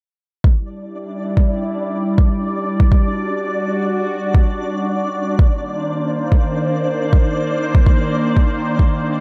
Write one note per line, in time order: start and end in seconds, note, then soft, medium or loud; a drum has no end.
0.44 5.35 G3 medium
0.44 9.20 D4 medium
0.44 2.89 E4 medium
0.44 9.20 D5 medium
0.44 5.35 D5 medium
0.44 kick loud
1.37 kick medium
2.18 kick loud
2.80 kick loud
2.92 5.37 F#4 medium
2.92 kick loud
4.35 kick loud
5.39 9.20 D#3 medium
5.39 9.20 A#3 medium
5.39 9.20 C5 medium
5.39 kick loud
6.32 kick medium
7.13 kick loud
7.75 kick loud
7.86 kick loud
8.37 kick medium
8.79 kick medium